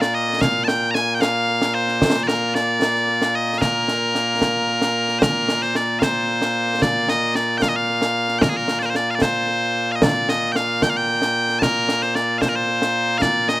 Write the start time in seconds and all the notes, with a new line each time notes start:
Already playing: A#2 A#3
0.01 D5, snare
0.14 D#5
0.41 F5, concert bass drum, snare
0.64 G5 A5, snare
0.91 G#5 A#5
0.95 snare
1.15 G5
1.21 F5, snare
1.62 snare
1.74 C5
1.88 snare
2.02 concert bass drum, snare
2.15 snare
2.24 D5
2.28 A#4, snare
2.55 D5, snare
2.82 snare
2.95 snare
3.22 snare
3.35 D#5
3.58 A#4 F5, concert bass drum, snare
3.88 snare
4.15 snare
4.42 concert bass drum, snare
4.82 snare
5.09 snare
5.19 A#4 C5, concert bass drum, snare
5.49 snare
5.62 C5, snare
5.75 D5, snare
5.99 C5 F5, concert bass drum, snare
6.42 snare
6.82 D5, concert bass drum, snare
7.09 D#5, snare
7.35 D5, snare
7.58 G5
7.62 F5, concert bass drum, snare
7.69 D#5
7.76 F5
8.02 snare
8.29 snare
8.39 A#4 G5, concert bass drum, snare
8.49 G#4
8.57 A#4
8.68 snare
8.79 C5 D5, snare
8.85 A#4
8.90 C5
8.95 D5, snare
9.10 F5
9.15 D5
9.22 C5, concert bass drum, snare
9.92 D#5 F5
10.02 D5, concert bass drum, snare
10.29 D#5, snare
10.52 F5 G5, snare
10.82 G5, concert bass drum, snare
10.90 F5
10.97 G5
11.22 snare
11.49 snare
11.59 A#4 A5, concert bass drum, snare
11.89 snare
12.02 C5, snare
12.15 D5, snare
12.38 C5 F5, concert bass drum, snare
12.49 A#4
12.56 C5
12.82 snare
13.18 D5 F5, concert bass drum, snare
13.48 D#5, snare